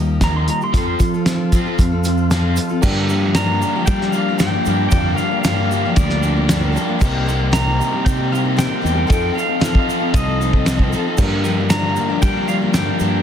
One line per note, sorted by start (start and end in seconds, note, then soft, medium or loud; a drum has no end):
0.00 0.48 D#2 loud
0.00 0.19 D#3 medium
0.00 0.22 F3 medium
0.00 0.19 G3 medium
0.00 0.22 A#3 medium
0.00 0.22 D#4 medium
0.00 0.72 F4 medium
0.00 0.22 G4 medium
0.00 0.72 G4 medium
0.00 0.72 A#4 medium
0.00 0.72 D#5 medium
0.21 0.61 D#3 medium
0.21 0.62 F3 medium
0.21 0.45 G3 medium
0.21 0.62 A#3 medium
0.21 0.61 D#4 medium
0.21 0.61 G4 medium
0.21 0.36 A#5 medium
0.21 kick medium
0.21 snare loud
0.21 closed hi-hat medium
0.21 shaker medium
0.36 0.49 C6 medium
0.46 0.71 D#3 medium
0.46 0.71 G3 medium
0.46 0.62 A#5 medium
0.46 closed hi-hat medium
0.61 0.75 A#3 soft
0.61 0.75 D#4 soft
0.61 0.75 G4 medium
0.61 0.75 C6 medium
0.61 shaker soft
0.73 0.94 F2 medium
0.73 1.15 F3 medium
0.73 1.15 C4 medium
0.73 2.81 F4 medium
0.73 1.14 F4 medium
0.73 2.81 A4 medium
0.73 1.13 A4 medium
0.73 2.81 C5 medium
0.73 2.81 F5 medium
0.73 kick loud
0.73 closed hi-hat medium
0.73 shaker medium
0.77 1.78 C6 loud
0.99 1.23 F3 medium
0.99 1.59 F3 loud
0.99 1.24 C4 medium
0.99 kick medium
0.99 closed hi-hat medium
0.99 shaker medium
1.14 1.26 C4 soft
1.14 1.27 F4 soft
1.14 1.27 A4 medium
1.14 shaker soft
1.26 1.52 F3 medium
1.26 1.52 C4 medium
1.26 1.54 F4 medium
1.26 1.54 A4 medium
1.26 snare loud
1.26 closed hi-hat medium
1.26 shaker medium
1.52 1.66 F3 medium
1.52 1.66 C4 medium
1.52 1.66 F4 medium
1.52 1.65 A4 medium
1.52 kick medium
1.52 closed hi-hat medium
1.52 shaker medium
1.66 1.93 C4 soft
1.66 1.91 F4 medium
1.66 1.90 A4 medium
1.79 2.58 F2 medium
1.79 2.03 F3 medium
1.79 2.03 C4 medium
1.79 kick loud
1.79 closed hi-hat medium
1.79 shaker medium
1.91 2.04 C4 soft
1.91 2.04 F4 medium
1.91 2.05 A4 medium
2.04 2.30 F3 medium
2.04 2.30 C4 medium
2.04 2.31 F4 medium
2.04 2.31 A4 medium
2.04 closed hi-hat medium
2.04 shaker medium
2.18 shaker soft
2.31 2.71 F3 medium
2.31 2.71 C4 medium
2.31 2.70 F4 loud
2.31 2.69 A4 loud
2.31 snare loud
2.31 closed hi-hat medium
2.31 shaker medium
2.56 2.81 F3 medium
2.56 2.82 C4 medium
2.56 closed hi-hat medium
2.56 shaker loud
2.69 2.84 C4 medium
2.69 2.84 F4 medium
2.69 2.84 A4 medium
2.69 shaker soft
2.81 3.62 G2 medium
2.81 3.10 G2 medium
2.81 3.10 D3 medium
2.81 3.11 G3 medium
2.81 6.97 F4 medium
2.81 6.96 G4 medium
2.81 6.96 A#4 medium
2.81 4.88 A#4 medium
2.81 6.96 D5 medium
2.81 4.88 D5 medium
2.81 4.88 F5 medium
2.81 4.88 G5 medium
2.81 kick loud
2.81 crash loud
2.81 shaker medium
2.85 3.09 F3 loud
2.85 3.09 A#3 medium
2.85 3.10 D4 loud
2.85 3.10 G4 loud
3.09 3.23 F3 medium
3.09 3.35 G3 medium
3.09 3.23 A#3 medium
3.09 3.22 D4 medium
3.09 3.21 G4 medium
3.09 shaker medium
3.23 3.36 F3 soft
3.23 3.36 A#3 soft
3.23 3.36 D4 medium
3.23 3.36 G4 medium
3.35 3.76 G2 medium
3.35 3.76 D3 medium
3.35 3.76 F3 medium
3.35 3.63 G3 medium
3.35 3.75 A#3 medium
3.35 3.75 D4 medium
3.35 3.74 G4 medium
3.35 3.85 A#5 loud
3.35 snare loud
3.35 ride bell medium
3.35 shaker medium
3.62 4.15 G2 medium
3.62 4.15 D3 medium
3.62 3.87 G3 medium
3.62 3.89 A#3 medium
3.62 3.88 D4 medium
3.62 3.89 G4 medium
3.62 shaker medium
3.75 4.01 F3 soft
3.75 4.01 A#3 soft
3.75 4.01 D4 soft
3.75 4.00 G4 medium
3.86 4.16 G3 medium
3.86 4.47 G3 loud
3.86 4.15 A#3 medium
3.86 4.14 D4 medium
3.86 4.14 G4 medium
3.86 4.14 G5 loud
3.86 kick loud
3.86 ride bell medium
3.86 shaker medium
4.01 4.13 F3 soft
4.01 4.13 A#3 medium
4.01 4.13 D4 medium
4.01 4.14 G4 medium
4.01 snare soft
4.11 4.27 F3 medium
4.11 4.27 A#3 medium
4.11 4.28 D4 medium
4.11 4.37 F5 medium
4.11 shaker medium
4.15 4.68 G2 medium
4.15 4.67 D3 medium
4.15 4.40 G3 medium
4.15 4.27 G4 medium
4.29 4.40 F3 soft
4.29 4.39 A#3 medium
4.29 4.40 D4 medium
4.29 4.40 G4 medium
4.38 4.53 G2 medium
4.38 4.54 D3 medium
4.38 4.54 F3 medium
4.38 4.68 G3 medium
4.38 4.54 A#3 medium
4.38 4.53 D4 medium
4.38 4.53 G4 medium
4.38 4.87 G5 medium
4.38 snare loud
4.38 ride bell medium
4.38 shaker medium
4.54 4.65 F3 soft
4.54 4.66 A#3 medium
4.54 4.66 D4 soft
4.54 4.67 G4 soft
4.66 4.87 G2 medium
4.66 4.92 F3 medium
4.66 4.94 G3 medium
4.66 4.92 A#3 medium
4.66 4.92 D4 medium
4.66 4.92 G4 medium
4.66 shaker medium
4.89 5.12 F2 medium
4.89 5.19 G2 medium
4.89 6.71 A#4 medium
4.89 6.71 D5 medium
4.89 6.72 F5 medium
4.89 5.16 G5 loud
4.89 kick loud
4.89 ride bell medium
4.89 shaker medium
4.93 5.19 D3 medium
4.93 5.16 F3 medium
4.93 5.21 G3 loud
4.93 5.18 A#3 medium
4.93 5.18 D4 medium
4.93 5.18 G4 loud
4.93 6.72 A#5 medium
5.16 5.31 F3 medium
5.16 5.31 A#3 medium
5.16 5.30 D4 medium
5.16 5.30 G4 medium
5.16 5.41 F5 medium
5.16 shaker medium
5.21 5.44 G3 medium
5.31 5.44 F3 soft
5.31 5.44 A#3 soft
5.31 5.44 D4 soft
5.31 5.44 G4 medium
5.42 5.84 G2 medium
5.42 5.84 D3 medium
5.42 5.84 F3 medium
5.42 5.72 G3 medium
5.42 5.84 A#3 medium
5.42 5.84 D4 medium
5.42 5.84 G4 loud
5.42 5.92 F5 medium
5.42 snare loud
5.42 ride bell medium
5.42 shaker medium
5.71 6.23 G2 medium
5.71 6.22 D3 medium
5.71 5.95 G3 medium
5.71 5.96 A#3 medium
5.71 5.97 D4 medium
5.71 5.97 G4 medium
5.71 shaker medium
5.85 6.11 F3 soft
5.85 6.11 A#3 soft
5.85 6.10 D4 medium
5.85 6.09 G4 medium
5.96 6.76 D2 loud
5.96 6.22 G3 medium
5.96 6.21 A#3 medium
5.96 6.21 D4 medium
5.96 6.21 G4 medium
5.96 6.71 D5 medium
5.96 kick loud
5.96 ride bell medium
5.96 shaker medium
6.10 6.22 F3 soft
6.10 6.22 A#3 medium
6.10 6.23 D4 medium
6.10 6.23 G4 medium
6.10 snare soft
6.23 6.76 G2 medium
6.23 6.75 D3 medium
6.23 6.36 F3 medium
6.23 6.48 G3 medium
6.23 6.36 A#3 medium
6.23 6.35 D4 medium
6.23 6.34 G4 medium
6.23 shaker medium
6.35 6.48 F3 soft
6.35 6.48 A#3 soft
6.35 6.48 D4 medium
6.35 6.48 G4 medium
6.48 6.62 G2 medium
6.48 6.62 D3 medium
6.48 6.61 F3 medium
6.48 6.76 G3 medium
6.48 6.61 A#3 medium
6.48 6.60 D4 loud
6.48 6.59 G4 medium
6.48 snare loud
6.48 ride bell medium
6.48 shaker medium
6.61 6.71 F3 soft
6.61 6.72 A#3 soft
6.61 6.73 D4 medium
6.61 6.74 G4 medium
6.72 6.87 F3 medium
6.72 6.87 A#3 medium
6.72 6.88 D4 medium
6.72 6.87 G4 medium
6.72 7.00 A#4 medium
6.72 7.02 D5 medium
6.72 7.02 F5 medium
6.77 7.00 G3 medium
6.77 7.02 A5 medium
6.77 shaker medium
6.88 7.00 F3 soft
6.88 6.99 A#3 medium
6.88 7.00 D4 soft
6.88 7.00 G4 medium
6.99 7.80 C2 medium
6.99 7.26 C3 loud
6.99 7.25 G3 medium
6.99 7.26 A#3 loud
6.99 7.29 C4 medium
6.99 7.25 D#4 loud
6.99 7.27 G4 loud
6.99 9.09 G4 medium
6.99 8.55 A#4 medium
6.99 8.55 C5 medium
6.99 8.56 D#5 medium
6.99 8.56 G5 medium
6.99 kick loud
6.99 crash medium
6.99 shaker loud
7.04 9.09 D#4 medium
7.04 9.09 A#4 medium
7.04 9.09 C5 medium
7.26 7.40 G3 medium
7.26 7.40 A#3 medium
7.26 7.53 C4 medium
7.26 7.39 D#4 medium
7.26 7.37 G4 medium
7.26 shaker medium
7.39 7.51 A#3 medium
7.39 7.51 D#4 medium
7.39 7.52 G4 soft
7.51 7.92 C3 medium
7.51 7.92 G3 medium
7.51 7.92 A#3 medium
7.51 7.80 C4 medium
7.51 7.91 D#4 loud
7.51 7.90 G4 loud
7.51 8.04 A#5 loud
7.51 snare loud
7.51 ride bell medium
7.51 shaker medium
7.79 8.32 C3 medium
7.79 8.04 G3 medium
7.79 8.05 C4 medium
7.79 8.05 D#4 medium
7.79 8.06 G4 loud
7.79 shaker medium
7.91 8.19 A#3 soft
7.91 8.17 D#4 medium
7.91 8.17 G4 soft
8.05 8.65 C3 medium
8.05 8.32 G3 medium
8.05 8.31 C4 medium
8.05 8.31 D#4 medium
8.05 8.31 G4 medium
8.05 8.32 G5 loud
8.05 kick loud
8.05 ride bell medium
8.05 shaker loud
8.18 8.31 A#3 soft
8.18 8.32 D#4 soft
8.18 8.32 G4 medium
8.32 8.85 C3 medium
8.32 8.45 G3 medium
8.32 8.44 A#3 medium
8.32 8.57 C4 medium
8.32 8.44 D#4 medium
8.32 8.43 G4 medium
8.32 8.39 F5 loud
8.32 shaker medium
8.44 8.55 A#3 soft
8.44 8.56 D#4 medium
8.44 8.56 G4 medium
8.57 8.71 C3 medium
8.57 8.71 G3 medium
8.57 8.70 A#3 medium
8.57 8.85 C4 medium
8.57 8.69 D#4 medium
8.57 8.67 G4 medium
8.57 9.10 A#4 soft
8.57 9.09 C5 soft
8.57 9.09 D#5 soft
8.57 9.09 G5 medium
8.57 9.10 G5 medium
8.57 snare loud
8.57 ride bell medium
8.57 shaker loud
8.68 8.81 A#3 soft
8.68 8.81 D#4 medium
8.68 8.82 G4 medium
8.81 9.04 E2 medium
8.81 8.96 G3 medium
8.81 8.95 A#3 medium
8.81 8.94 D#4 medium
8.81 8.93 G4 medium
8.86 9.10 C4 medium
8.86 shaker medium
8.95 9.07 A#3 soft
8.95 9.07 D#4 soft
8.95 9.08 G4 medium
9.07 9.30 F2 loud
9.07 9.33 F3 medium
9.07 9.33 C4 medium
9.07 9.34 D#4 medium
9.07 11.17 D#4 medium
9.07 9.35 A4 loud
9.07 11.14 A4 medium
9.07 11.14 C5 medium
9.07 11.17 C5 medium
9.07 11.14 D#5 medium
9.07 9.34 G5 loud
9.07 kick loud
9.07 ride bell medium
9.11 9.38 C4 medium
9.11 11.17 F4 medium
9.11 11.17 A4 medium
9.11 11.15 F5 medium
9.11 shaker medium
9.34 9.48 F3 medium
9.34 9.48 C4 medium
9.34 9.47 D#4 medium
9.34 9.45 A4 medium
9.34 9.61 F5 medium
9.39 9.63 C4 medium
9.39 shaker medium
9.46 9.60 C4 soft
9.46 9.60 D#4 medium
9.46 9.60 A4 medium
9.60 10.00 F3 medium
9.60 10.01 C4 medium
9.60 10.00 D#4 medium
9.60 9.99 A4 medium
9.60 10.16 F5 medium
9.60 snare loud
9.60 ride bell medium
9.64 shaker medium
9.75 kick medium
9.89 10.14 F3 medium
9.89 10.14 C4 medium
9.89 10.14 D#4 medium
9.89 10.14 A4 medium
9.89 shaker medium
10.00 10.27 C4 soft
10.00 10.26 D#4 medium
10.00 10.25 A4 medium
10.14 10.93 C2 loud
10.14 10.42 F3 medium
10.14 10.40 C4 medium
10.14 10.40 D#4 medium
10.14 10.40 A4 medium
10.14 10.89 D#5 medium
10.14 kick loud
10.14 ride bell medium
10.14 shaker medium
10.26 10.39 C4 soft
10.26 10.40 D#4 soft
10.26 10.40 A4 medium
10.40 10.53 F3 medium
10.40 10.54 C4 medium
10.40 10.53 D#4 medium
10.40 10.52 A4 medium
10.40 shaker medium
10.53 10.65 C4 medium
10.53 10.65 D#4 medium
10.53 10.66 A4 medium
10.53 kick medium
10.65 10.79 F3 medium
10.65 10.79 C4 medium
10.65 10.80 D#4 medium
10.65 10.79 A4 medium
10.65 snare loud
10.65 ride bell medium
10.65 shaker loud
10.79 10.93 C4 soft
10.79 10.93 D#4 medium
10.79 10.93 A4 medium
10.79 kick medium
10.93 11.06 F3 medium
10.93 11.06 C4 medium
10.93 11.06 D#4 medium
10.93 11.05 A4 medium
10.93 shaker medium
11.06 11.19 C4 soft
11.06 11.19 D#4 soft
11.06 11.19 A4 soft
11.17 11.97 G2 medium
11.17 11.45 G2 medium
11.17 11.45 D3 medium
11.17 11.44 F3 loud
11.17 11.45 G3 medium
11.17 11.44 A#3 medium
11.17 13.22 D4 medium
11.17 11.45 D4 loud
11.17 13.22 F4 medium
11.17 13.22 G4 medium
11.17 11.45 G4 loud
11.17 13.22 A#4 medium
11.17 11.43 A#4 medium
11.17 13.22 D5 medium
11.17 13.22 F5 medium
11.17 kick loud
11.17 crash loud
11.17 shaker medium
11.44 11.58 F3 medium
11.44 11.70 G3 medium
11.44 11.58 A#3 medium
11.44 11.58 D4 medium
11.44 11.57 G4 medium
11.44 11.72 A#4 medium
11.44 shaker medium
11.58 11.71 F3 soft
11.58 11.71 A#3 medium
11.58 11.71 D4 medium
11.58 11.71 G4 medium
11.70 12.10 G2 medium
11.70 12.10 D3 medium
11.70 12.10 F3 medium
11.70 11.98 G3 medium
11.70 12.09 A#3 medium
11.70 12.08 D4 medium
11.70 12.08 G4 medium
11.70 11.96 A#4 medium
11.70 12.21 A#5 loud
11.70 snare loud
11.70 ride bell medium
11.70 shaker loud
11.96 12.50 G2 medium
11.96 12.49 D3 medium
11.96 12.23 G3 medium
11.96 12.24 A#3 medium
11.96 12.24 D4 medium
11.96 12.25 A#4 medium
11.96 shaker medium
12.09 12.36 F3 soft
12.09 12.36 A#3 medium
12.09 12.35 D4 medium
12.09 12.35 G4 medium
12.22 12.81 G3 medium
12.22 12.50 G3 medium
12.22 12.49 A#3 medium
12.22 12.48 D4 medium
12.22 12.49 A#4 medium
12.22 12.49 G5 loud
12.22 kick loud
12.22 ride bell medium
12.22 shaker medium
12.36 12.47 F3 soft
12.36 12.49 A#3 soft
12.36 12.49 D4 medium
12.36 12.49 G4 medium
12.48 13.02 G2 medium
12.48 13.02 D3 medium
12.48 12.61 F3 medium
12.48 12.74 G3 medium
12.48 12.61 A#3 medium
12.48 12.61 D4 medium
12.48 12.60 G4 medium
12.48 12.76 A#4 medium
12.48 12.55 F5 medium
12.48 shaker medium
12.62 12.75 F3 soft
12.62 12.75 A#3 soft
12.62 12.75 D4 soft
12.62 12.75 G4 medium
12.74 12.88 G2 medium
12.74 12.88 D3 medium
12.74 12.87 F3 medium
12.74 13.02 G3 medium
12.74 12.86 A#3 loud
12.74 12.86 D4 medium
12.74 12.86 G4 medium
12.74 13.00 A#4 medium
12.74 13.22 G5 medium
12.74 snare loud
12.74 ride bell medium
12.74 shaker medium
12.87 12.99 F3 soft
12.87 13.00 A#3 soft
12.87 13.00 D4 medium
12.87 13.00 G4 soft
13.00 13.20 G2 medium
13.00 13.22 F3 medium
13.00 13.22 G3 medium
13.00 13.22 A#3 medium
13.00 13.22 D4 medium
13.00 13.22 G4 medium
13.00 13.22 A#4 medium
13.00 shaker medium